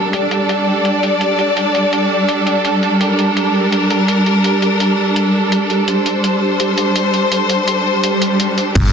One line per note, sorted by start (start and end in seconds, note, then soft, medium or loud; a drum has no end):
0.00 8.71 G3 medium
0.00 8.71 D4 medium
0.00 8.74 G4 medium
0.00 8.71 A4 medium
0.00 0.12 A#4 medium
0.00 downlifter medium
0.13 2.99 D5 medium
0.13 closed hi-hat medium
0.31 closed hi-hat medium
0.49 closed hi-hat medium
0.85 closed hi-hat medium
1.03 closed hi-hat medium
1.21 closed hi-hat medium
1.39 closed hi-hat soft
1.57 closed hi-hat medium
1.75 closed hi-hat medium
1.93 closed hi-hat medium
2.29 closed hi-hat medium
2.47 closed hi-hat medium
2.65 closed hi-hat medium
2.83 closed hi-hat soft
3.01 5.87 A#4 medium
3.01 closed hi-hat medium
3.19 closed hi-hat medium
3.37 closed hi-hat medium
3.72 closed hi-hat medium
3.90 closed hi-hat medium
4.08 closed hi-hat medium
4.26 closed hi-hat soft
4.44 closed hi-hat medium
4.62 closed hi-hat medium
4.80 closed hi-hat medium
5.16 closed hi-hat medium
5.52 closed hi-hat medium
5.70 closed hi-hat soft
5.88 8.74 C5 medium
5.88 closed hi-hat medium
6.06 closed hi-hat medium
6.24 closed hi-hat medium
6.60 closed hi-hat medium
6.78 closed hi-hat medium
6.96 closed hi-hat medium
7.14 closed hi-hat soft
7.32 closed hi-hat medium
7.50 closed hi-hat medium
7.68 closed hi-hat medium
8.03 closed hi-hat medium
8.03 swell medium
8.22 closed hi-hat medium
8.40 closed hi-hat medium
8.58 closed hi-hat soft
8.75 8.93 G1 loud
8.75 8.93 G3 medium
8.75 8.93 D4 medium
8.75 8.93 G4 medium
8.75 8.93 A4 medium
8.75 8.93 A#4 medium
8.75 kick loud
8.75 closed hi-hat medium
8.75 crash loud
8.75 sub drop medium